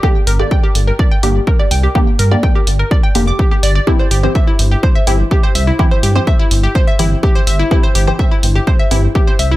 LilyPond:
<<
  \new Staff \with { instrumentName = "Synth pluck" } { \time 4/4 \key c \mixolydian \tempo 4 = 125 g'16 r16 bes'16 d''16 g''16 g'16 r16 bes'16 d''16 g''16 g'16 r16 bes'16 d''16 g''16 g'16 | g'16 r16 bes'16 d''16 g''16 g'16 r16 bes'16 d''16 g''16 g'16 d'''16 g'16 g'16 d''16 d''16 | e'16 c''16 g'16 c''16 e''16 e'16 r16 g'16 c''16 e''16 e'16 r16 g'16 c''16 e''16 e'16 | e'16 c''16 g'16 c''16 e''16 e'16 r16 g'16 c''16 e''16 e'16 r16 g'16 c''16 e''16 e'16 |
e'16 c''16 g'16 c''16 e''16 e'16 r16 g'16 c''16 e''16 e'16 r16 g'16 c''16 e''16 e'16 | }
  \new Staff \with { instrumentName = "Synth stab" } { \time 4/4 \key c \mixolydian <d bes g'>8. <d bes g'>4.~ <d bes g'>16 <d bes g'>4. | <d bes g'>8. <d bes g'>4.~ <d bes g'>16 <d bes g'>4. | <e c' g'>8. <e c' g'>4.~ <e c' g'>16 <e c' g'>4. | <e c' g'>8. <e c' g'>4.~ <e c' g'>16 <e c' g'>4. |
<e c' g'>8. <e c' g'>4.~ <e c' g'>16 <e c' g'>4. | }
  \new Staff \with { instrumentName = "Detuned saw bass" } { \clef bass \time 4/4 \key c \mixolydian r8 g,,8 r8 g,,8 r8 g,,8 r8 c,8 | r8 g,8 r8 g,,8 r8 f,,8 r8 g,,8 | r8 g,,8 r8 g,,8 r8 g,,8 r8 c,8 | r8 g,8 r8 g,,8 r8 g,,8 r8 g,,8 |
r8 g,,8 r8 g,,8 r8 g,,8 r8 c,8 | }
  \new DrumStaff \with { instrumentName = "Drums" } \drummode { \time 4/4 bd8 hho8 bd8 hho8 bd8 hho8 bd8 hho8 | bd8 hho8 bd8 hho8 bd8 hho8 bd8 hho8 | bd8 hho8 bd8 hho8 bd8 hho8 bd8 hho8 | bd8 hho8 bd8 hho8 bd8 hho8 bd8 hho8 |
bd8 hho8 bd8 hho8 bd8 hho8 bd8 hho8 | }
>>